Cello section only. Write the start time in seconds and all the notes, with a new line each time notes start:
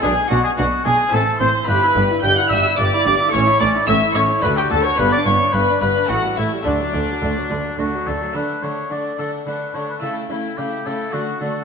0.03 B2
0.30 B2
0.58 B2
0.86 B2
1.13 A2
1.41 A2
1.68 G2
1.96 G2
2.23 G2
2.50 G2
2.78 G2
3.05 G2
3.33 A2
3.60 A2
3.87 A2
4.15 A2
4.43 D2
4.70 D2
4.98 G2
5.26 G2
5.53 G2
5.81 G2
6.09 A2
6.37 A2
6.66 D3
6.94 D3
7.22 D3
7.50 D3
7.78 D3
8.06 D3
8.34 D3
8.62 D3
8.90 D3
9.18 D3
9.46 D3
9.74 D3
10.02 C#3
10.29 C#3
10.57 C#3
10.85 C#3
11.13 D3
11.41 D3